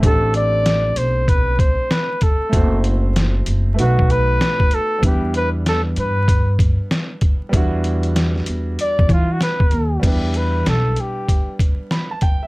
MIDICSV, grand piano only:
0, 0, Header, 1, 2, 480
1, 0, Start_track
1, 0, Key_signature, 1, "minor"
1, 0, Tempo, 625000
1, 26, Time_signature, 4, 2, 24, 8
1, 9578, End_track
2, 0, Start_track
2, 0, Title_t, "Grand piano"
2, 0, Program_c, 0, 0
2, 0, Note_on_c, 0, 57, 67
2, 8, Note_on_c, 0, 60, 58
2, 24, Note_on_c, 0, 62, 63
2, 37, Note_on_c, 0, 67, 57
2, 51, Note_on_c, 0, 69, 63
2, 1899, Note_off_c, 0, 57, 0
2, 1906, Note_off_c, 0, 60, 0
2, 1913, Note_on_c, 0, 57, 64
2, 1914, Note_off_c, 0, 62, 0
2, 1921, Note_off_c, 0, 67, 0
2, 1926, Note_on_c, 0, 60, 53
2, 1928, Note_off_c, 0, 69, 0
2, 1942, Note_on_c, 0, 64, 59
2, 1957, Note_on_c, 0, 66, 58
2, 1970, Note_on_c, 0, 72, 70
2, 2862, Note_off_c, 0, 57, 0
2, 2873, Note_on_c, 0, 57, 71
2, 2877, Note_off_c, 0, 60, 0
2, 2885, Note_off_c, 0, 64, 0
2, 2888, Note_on_c, 0, 59, 60
2, 2893, Note_off_c, 0, 66, 0
2, 2899, Note_off_c, 0, 72, 0
2, 2903, Note_on_c, 0, 63, 63
2, 2916, Note_on_c, 0, 66, 60
2, 2933, Note_on_c, 0, 71, 70
2, 3829, Note_on_c, 0, 55, 67
2, 3830, Note_off_c, 0, 57, 0
2, 3832, Note_off_c, 0, 59, 0
2, 3844, Note_on_c, 0, 59, 66
2, 3845, Note_off_c, 0, 63, 0
2, 3852, Note_off_c, 0, 66, 0
2, 3859, Note_on_c, 0, 62, 60
2, 3860, Note_off_c, 0, 71, 0
2, 3873, Note_on_c, 0, 64, 61
2, 3888, Note_on_c, 0, 71, 69
2, 5737, Note_off_c, 0, 55, 0
2, 5744, Note_off_c, 0, 59, 0
2, 5752, Note_off_c, 0, 62, 0
2, 5753, Note_on_c, 0, 55, 73
2, 5759, Note_off_c, 0, 64, 0
2, 5766, Note_off_c, 0, 71, 0
2, 5767, Note_on_c, 0, 59, 73
2, 5784, Note_on_c, 0, 62, 69
2, 5796, Note_on_c, 0, 64, 77
2, 5813, Note_on_c, 0, 66, 84
2, 7659, Note_off_c, 0, 55, 0
2, 7666, Note_off_c, 0, 59, 0
2, 7674, Note_off_c, 0, 62, 0
2, 7677, Note_on_c, 0, 55, 63
2, 7680, Note_off_c, 0, 64, 0
2, 7689, Note_off_c, 0, 66, 0
2, 7691, Note_on_c, 0, 59, 54
2, 7706, Note_on_c, 0, 62, 53
2, 7721, Note_on_c, 0, 64, 57
2, 7736, Note_on_c, 0, 71, 68
2, 9149, Note_on_c, 0, 83, 69
2, 9294, Note_off_c, 0, 83, 0
2, 9301, Note_on_c, 0, 81, 67
2, 9382, Note_off_c, 0, 81, 0
2, 9388, Note_on_c, 0, 79, 70
2, 9533, Note_off_c, 0, 79, 0
2, 9544, Note_on_c, 0, 76, 61
2, 9578, Note_off_c, 0, 55, 0
2, 9578, Note_off_c, 0, 59, 0
2, 9578, Note_off_c, 0, 62, 0
2, 9578, Note_off_c, 0, 64, 0
2, 9578, Note_off_c, 0, 71, 0
2, 9578, Note_off_c, 0, 76, 0
2, 9578, End_track
0, 0, End_of_file